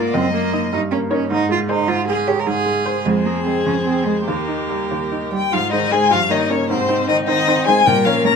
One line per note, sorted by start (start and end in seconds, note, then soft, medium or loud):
0.00 0.13 G#2 medium
0.00 0.15 A#3 medium
0.00 0.17 A#3 soft
0.00 0.13 F4 soft
0.00 0.15 A#4 soft
0.00 0.13 D5 soft
0.00 0.16 D5 soft
0.14 0.70 F#2 medium
0.14 0.33 C4 medium
0.14 0.72 D#5 soft
0.14 0.72 D#5 medium
0.34 0.65 A#3 soft
0.34 0.72 A#3 medium
0.53 0.70 D#4 soft
0.53 0.71 D#5 soft
0.73 1.29 G2 medium
0.73 0.81 D#4 medium
0.91 1.23 A#3 soft
0.91 0.99 C#4 medium
1.10 1.30 C#4 medium
1.10 1.28 D#4 soft
1.10 1.25 A#4 medium
1.10 1.28 C#5 soft
1.10 1.25 C#5 medium
1.30 1.86 G#2 medium
1.30 1.50 D#4 medium
1.49 1.80 G#3 soft
1.49 1.59 F4 medium
1.69 1.86 D#4 soft
1.69 1.90 D#4 medium
1.69 1.83 G#4 medium
1.69 1.87 C5 soft
1.69 1.84 C5 medium
1.88 2.45 G#2 medium
1.88 2.08 F4 medium
2.08 2.39 G#3 soft
2.08 2.29 G#4 medium
2.27 2.41 G4 medium
2.27 2.42 G#4 medium
2.27 2.45 G#4 soft
2.27 2.42 C#5 medium
2.27 2.45 C#5 soft
2.40 2.48 A#4 medium
2.47 3.04 G#2 medium
2.47 3.07 G#4 medium
2.66 2.97 G#3 soft
2.85 3.03 G#4 soft
2.85 3.01 G#4 medium
2.85 3.03 C5 soft
2.85 3.01 C5 medium
3.05 3.65 F2 medium
3.05 3.27 G#3 medium
3.05 4.23 G#4 medium
3.05 4.30 C5 soft
3.26 3.44 A#3 medium
3.26 3.58 G#4 soft
3.45 3.78 G#3 soft
3.45 3.65 C4 medium
3.66 4.26 F2 soft
3.66 3.74 C#4 medium
3.85 4.08 C4 medium
3.85 4.19 G#4 soft
4.06 4.26 G#3 medium
4.06 4.27 G#3 soft
4.27 4.89 D#2 soft
4.27 5.30 A#3 medium
4.27 5.30 G4 soft
4.27 5.32 A#4 soft
4.48 4.82 D#4 soft
4.70 5.03 G3 soft
4.91 5.51 D#2 soft
5.12 5.45 D#4 soft
5.31 5.39 G3 medium
5.31 5.53 G3 soft
5.31 5.55 G5 medium
5.52 5.72 G#2 medium
5.52 5.60 F3 soft
5.52 5.72 F4 medium
5.52 5.71 F5 medium
5.71 5.91 D#3 medium
5.71 5.90 G#3 soft
5.71 5.93 D#4 medium
5.71 5.90 D#4 soft
5.71 5.91 C5 soft
5.71 5.93 D#5 medium
5.91 6.13 G#3 medium
5.91 6.10 G#3 soft
5.91 6.10 D#4 soft
5.91 6.10 G#4 medium
5.91 6.10 C5 soft
5.91 6.13 G#5 medium
6.10 6.30 G2 soft
6.10 6.30 F3 medium
6.10 6.18 F4 medium
6.10 6.32 F5 medium
6.30 6.39 D#3 soft
6.30 6.48 A#3 soft
6.30 6.51 D#4 medium
6.30 6.48 D#4 soft
6.30 6.49 C#5 soft
6.30 6.52 D#5 medium
6.50 6.72 C#3 medium
6.50 6.68 A#3 soft
6.50 6.68 C#4 medium
6.50 6.68 D#4 soft
6.50 6.69 C#5 medium
6.50 6.69 C#5 soft
6.69 6.89 G#2 medium
6.69 7.08 C3 medium
6.69 7.09 C4 medium
6.69 7.08 C5 medium
6.88 7.06 C4 soft
6.88 7.07 D#4 soft
6.88 7.07 C5 soft
7.07 7.17 D#3 medium
7.07 7.26 C4 soft
7.07 7.26 D#4 medium
7.07 7.26 D#4 soft
7.07 7.26 C5 soft
7.07 7.16 D#5 medium
7.27 7.69 D#3 medium
7.27 7.45 C4 soft
7.27 7.67 D#4 medium
7.27 7.45 D#4 soft
7.27 7.46 C5 soft
7.27 7.66 D#5 medium
7.47 7.65 C4 soft
7.47 7.65 D#4 soft
7.47 7.66 C5 soft
7.66 7.87 G#3 medium
7.66 7.85 C4 soft
7.66 7.85 D#4 soft
7.66 7.86 G#4 medium
7.66 7.85 C5 soft
7.66 7.88 G#5 medium
7.86 8.06 A#2 medium
7.86 8.08 G3 medium
7.86 8.36 A#4 medium
7.86 8.07 G5 medium
8.05 8.27 F3 medium
8.05 8.23 A#3 soft
8.05 8.23 C#4 soft
8.05 8.23 C#5 soft
8.05 8.25 F5 medium
8.24 8.36 A#3 soft
8.24 8.36 A#3 medium
8.24 8.36 C#4 soft
8.24 8.36 C#5 soft
8.24 8.33 A#5 medium